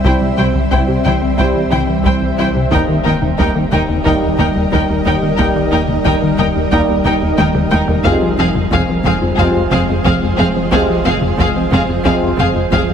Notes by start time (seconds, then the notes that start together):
Already playing: C2 G3 C4 C5 E5
0.05 C2 C3 G3 C4 E4 C5 G5, taiko
0.21 C3 G3
0.37 C2 C3 G3 E4 C5 G5
0.54 C2 C4, taiko mid
0.71 C2 C3 E4 C5 G5, taiko
0.87 C3 G3
1.04 C2 E3 E4 C5 G5, taiko mid
1.22 C2 C4
1.38 C2 C3 G3 C4 E4 C5 G5, taiko
1.54 C2 E3
1.71 C2 E3 E4 C5 G5, taiko mid
1.87 C2 E3
2.03 C2 C3 E4 C5 G5, taiko
2.20 C2 E3
2.38 C2 E4 C5 G5
2.55 C3 G3
2.71 D#1 D#2 D#3 G3 A#3 D#4 A#4 D#5 G5, taiko
2.88 D#3 A#3
3.04 D#2 D#3 A#3 D#4 A#4 G5
3.22 D#2 D#4, taiko mid
3.38 D#2 D#3 D#4 A#4 G5, taiko
3.55 D#3 A#3
3.71 D#2 G3 D#4 A#4 G5, taiko mid
3.89 D#2 D#4
4.05 D#2 D#3 G3 A#3 D#4 A#4 G5, taiko
4.22 D#2 G3
4.38 D#2 G3 D#4 A#4 G5, taiko mid
4.55 D#2 G3
4.71 D#2 D#3 D#4 A#4 G5, taiko
4.89 D#2 G3
5.05 D#2 D#4 A#4 G5
5.22 D#3 A#3
5.38 D#2 D#3 G3 A#3 D#4 A#4 G5, taiko
5.56 D#3 A#3
5.71 D#2 D#3 A#3 D#4 A#4 G5
5.88 D#2 D#4, taiko mid
6.05 D#2 D#3 D#4 A#4 G5, taiko
6.22 D#3 A#3
6.38 D#2 G3 D#4 A#4 G5, taiko mid
6.55 D#2 D#4
6.72 D#2 D#3 G3 A#3 D#4 A#4 G5, taiko
6.88 D#2 G3
7.04 D#2 G3 D#4 A#4 G5, taiko mid
7.22 D#2 G3
7.38 D#2 D#3 D#4 A#4 G5, taiko high
7.55 D#2 G3, taiko mid
7.71 D#2 D#4 A#4 G5, taiko high
7.88 D#3 A#3, taiko low
8.04 F1 F2 C3 F3 G#3 C4 F4 G#4 C5 F5, taiko
8.21 F3 C4
8.38 F1 F2 F3 C4 G#4 F5
8.55 F2 F4, taiko mid
8.71 F1 F2 F3 C4 G#4 F5, taiko
8.89 F3 C4
9.04 F1 F2 G#3 C4 G#4 F5, taiko mid
9.22 F2 F4
9.36 F1 F2 C3 F3 G#3 C4 F4 G#4 F5, taiko
9.55 F2 G#3
9.71 F1 F2 G#3 C4 G#4 F5, taiko mid
9.89 F2 G#3
10.04 F1 F2 F3 C4 G#4 F5, taiko
10.23 F2 G#3
10.37 F1 F2 C4 G#4 F5
10.55 F3 C4
10.71 F1 F2 C3 F3 G#3 C4 F4 G#4 F5, taiko
10.89 F3 C4
11.05 F1 F2 F3 C4 G#4 F5
11.21 F2 F4, taiko mid
11.38 F1 F2 F3 C4 G#4 F5, taiko
11.56 F3 C4
11.72 F1 F2 G#3 C4 G#4 F5, taiko mid
11.89 F2 F4
12.04 F1 F2 C3 F3 G#3 C4 F4 G#4 F5, taiko
12.22 F2 G#3
12.38 F1 F2 G#3 C4 G#4 F5, taiko mid
12.55 F2 G#3
12.72 F1 F2 F3 C4 G#4 F5, taiko
12.89 F2 G#3